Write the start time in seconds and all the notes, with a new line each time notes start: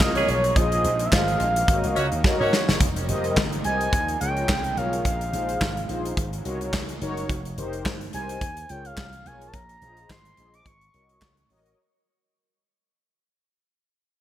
Already playing: C#3 F3 G#3 A#3 D#4
0.00 C2 F4 G#4 A#4 C#5 D#5, kick, snare, clap
0.15 A#3 C#4 G#4 C#5, closed hi-hat
0.28 B1 C#5, closed hi-hat
0.44 closed hi-hat
0.56 A#1 C3 A#3 F4 G#4 C5 D#5, kick, closed hi-hat
0.72 closed hi-hat
0.84 A#1, closed hi-hat
0.99 closed hi-hat
1.06 E5
1.12 G#1 F4 G#4 C5 D#5 F5, kick, snare, clap
1.28 closed hi-hat
1.40 A#1, closed hi-hat
1.56 closed hi-hat
1.68 G#1 C#3 F#3 D#4 F#4 A#4 C#5 D#5, kick, closed hi-hat
1.84 C2, closed hi-hat
1.96 C#2 A#3 C#4 F#4 C#5, closed hi-hat
2.12 D#2, closed hi-hat
2.24 F#4 A#4 C#5 D#5, kick, snare
2.40 G#2 A#3 C#4 F#4 C#5
2.53 snare
2.69 F#1, snare
2.80 F1 C3 F3 G3 A#3 D#4, kick, closed hi-hat
2.96 closed hi-hat
3.08 F1 G4 A#4 C5 D#5, closed hi-hat
3.24 closed hi-hat
3.37 G1, kick, snare, clap
3.52 closed hi-hat
3.64 C2 G4 A#4 C5 D#5 G#5, closed hi-hat
3.81 closed hi-hat
3.93 D#2 C#3 G#3, kick, closed hi-hat
4.08 closed hi-hat
4.20 C#2 F4 G#4 A#4 C#5 G5, closed hi-hat
4.37 closed hi-hat
4.49 C2, kick, snare, clap
4.64 closed hi-hat
4.77 B1 F4 G#4 A#4 C#5 F5, closed hi-hat
4.93 closed hi-hat
5.05 A#1 C3 F5, kick, closed hi-hat
5.21 closed hi-hat
5.33 A#1 D#4 F4 G#4 C5, closed hi-hat
5.49 closed hi-hat
5.61 G#1, kick, snare, clap
5.77 closed hi-hat
5.89 A#1 D#4 F4 G#4 C5, closed hi-hat
6.05 closed hi-hat
6.17 G#1 C#3 F#3 G#3, kick, closed hi-hat
6.33 closed hi-hat
6.45 C2 D#4 F#4 A#4 C#5, closed hi-hat
6.61 closed hi-hat
6.73 C#2, kick, snare, clap
6.89 closed hi-hat
7.01 F#1 D#4 F#4 A#4 C#5, closed hi-hat
7.17 closed hi-hat
7.29 F1, kick, closed hi-hat
7.45 closed hi-hat
7.57 F1 D#4 G4 A#4 C5, closed hi-hat
7.73 closed hi-hat
7.86 G1, kick, snare, clap
8.01 closed hi-hat
8.13 C2 D#4 G4 A#4 C5 G#5, closed hi-hat
8.29 closed hi-hat
8.41 D#2, kick, closed hi-hat
8.57 closed hi-hat
8.69 C#2 F4 G#4 A#4 C#5 G5, closed hi-hat
8.85 F5, closed hi-hat
8.97 C2, kick, snare, clap
9.13 closed hi-hat
9.26 B1 F4 G#4 A#4 C#5 G#5, closed hi-hat
9.41 closed hi-hat
9.48 A5
9.53 A#1 A#5, kick, closed hi-hat
9.69 closed hi-hat
9.82 A#1 F4 G#4 C5 D#5, closed hi-hat
9.97 closed hi-hat
10.10 G#1 C6, kick, snare, clap
10.25 closed hi-hat
10.37 A#1 F4 G#4 C5 D#5, closed hi-hat
10.54 D6, closed hi-hat
10.66 G#1 C#6, kick, closed hi-hat
10.81 closed hi-hat
10.94 C2 F#4 A#4 C#5 D#5, closed hi-hat
11.09 closed hi-hat
11.22 C#2, kick, snare, clap
11.37 closed hi-hat
11.50 A1 F#4 A#4 C#5 D#5, open hi-hat
11.66 closed hi-hat